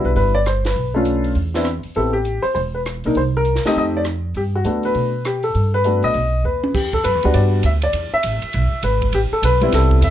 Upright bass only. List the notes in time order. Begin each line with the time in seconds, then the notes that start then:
0.04 B1
0.16 G1
0.76 B1
1.36 E2
1.85 muted upright bass stroke
1.97 A1
2.45 muted upright bass stroke
2.55 E1
3.05 B1
3.16 C2
3.65 muted upright bass stroke
3.76 F2
4.35 G2
4.64 D2
4.95 B2
5.55 G2
6.04 A#1
6.15 B1
6.44 D#2
6.75 E2
7.05 F#2
7.15 E2
7.25 D2
7.34 G2
7.64 D2
7.93 E2
8.13 muted upright bass stroke
8.24 A1
8.43 muted upright bass stroke
8.54 B1
8.72 muted upright bass stroke
8.83 G#1
9.13 A1
9.32 muted upright bass stroke
9.42 B1
9.73 C2
10.01 E2